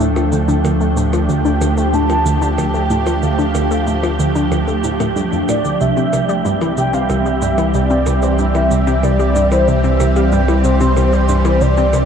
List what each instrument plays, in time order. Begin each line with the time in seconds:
Already playing: analog synth bass D2, ambient pad F3 A3 D4 A4, synth texture G5
0.00 cabasa
0.16 synth arpeggio sound F3, percussion blips, cabasa
0.32 synth arpeggio sound D2, cabasa
0.48 synth arpeggio sound D3, cabasa
0.64 synth arpeggio sound D2, ambient pad G4, percussion blips, cabasa
0.81 synth arpeggio sound A3, cabasa
0.97 synth arpeggio sound A2, cabasa
1.13 synth arpeggio sound F3, percussion blips, cabasa
1.29 synth arpeggio sound D2, soft synth lead G5, cabasa
1.45 synth arpeggio sound D3, cabasa
1.61 synth arpeggio sound D2, percussion blips, cabasa
1.77 synth arpeggio sound A3, soft synth lead G5, cabasa
1.93 synth arpeggio sound A2, soft synth lead A5, cabasa
2.10 synth arpeggio sound F3, percussion blips, cabasa
2.26 synth arpeggio sound D2, cabasa
2.42 synth arpeggio sound D3, cabasa
2.58 synth arpeggio sound D2, soft synth lead G5, percussion blips, cabasa
2.74 synth arpeggio sound A3, cabasa
2.90 synth arpeggio sound A2, cabasa
3.06 synth arpeggio sound F3, percussion blips, cabasa
3.22 synth arpeggio sound D2, soft synth lead F5, cabasa
3.39 synth arpeggio sound D3, cabasa
3.55 synth arpeggio sound D2, percussion blips, cabasa
3.71 synth arpeggio sound A3, cabasa
3.87 synth arpeggio sound A2, cabasa
4.03 synth arpeggio sound F3, percussion blips, cabasa
4.19 synth arpeggio sound D2, cabasa
4.35 synth arpeggio sound D3, cabasa
4.52 synth arpeggio sound D2, percussion blips, cabasa
4.68 synth arpeggio sound A3, cabasa
4.84 synth arpeggio sound A2, cabasa
5.00 synth arpeggio sound A2, percussion blips, cabasa
5.16 synth arpeggio sound G2, cabasa
5.32 synth arpeggio sound F2, cabasa
5.48 synth arpeggio sound A2, soft synth lead D5, percussion blips, cabasa
5.65 synth arpeggio sound D2, cabasa
5.80 analog synth bass C2, synth arpeggio sound C2, ambient pad E3 G3 C4 G4, soft synth lead E5, cabasa
5.97 synth arpeggio sound C3, cabasa
6.13 synth arpeggio sound C2, percussion blips, cabasa
6.29 synth arpeggio sound G3, cabasa
6.45 synth arpeggio sound G2, cabasa
6.61 synth arpeggio sound E3, percussion blips, cabasa
6.77 synth arpeggio sound C2, soft synth lead G5, cabasa
6.93 synth arpeggio sound C3, soft synth lead F5, cabasa
7.10 synth arpeggio sound C2, soft synth lead E5, percussion blips, cabasa
7.26 synth arpeggio sound G3, cabasa
7.42 synth arpeggio sound G2, cabasa
7.58 synth arpeggio sound E3, percussion blips, cabasa
7.74 synth arpeggio sound C2, soft synth lead D5, cabasa
7.90 synth arpeggio sound C3, cabasa
8.06 synth arpeggio sound C2, percussion blips, cabasa
8.22 synth arpeggio sound G3, soft synth lead C5, cabasa
8.39 synth arpeggio sound G2, soft synth lead E5, cabasa
8.55 synth arpeggio sound E3, percussion blips, cabasa
8.71 synth arpeggio sound C2, cabasa
8.87 synth arpeggio sound C3, cabasa
9.03 synth arpeggio sound C2, soft synth lead D5, percussion blips, cabasa
9.19 synth arpeggio sound G3, cabasa
9.36 synth arpeggio sound G2, cabasa
9.52 synth arpeggio sound E3, soft synth lead C5, percussion blips, cabasa
9.68 synth arpeggio sound C2, soft synth lead E5, cabasa
9.84 synth arpeggio sound C3, cabasa
10.00 synth arpeggio sound C2, percussion blips, cabasa
10.16 synth arpeggio sound G3, soft synth lead F5, cabasa
10.32 synth arpeggio sound G2, soft synth lead G5, cabasa
10.48 synth arpeggio sound E3, percussion blips, cabasa
10.64 synth arpeggio sound C2, soft synth lead C5, cabasa
10.80 synth arpeggio sound C3, cabasa
10.97 synth arpeggio sound C2, percussion blips, cabasa
11.13 synth arpeggio sound G3, cabasa
11.29 synth arpeggio sound G2, cabasa
11.45 synth arpeggio sound E3, percussion blips, cabasa
11.61 synth arpeggio sound C2, soft synth lead D5, cabasa
11.77 synth arpeggio sound C3, cabasa
11.93 synth arpeggio sound C2, percussion blips, cabasa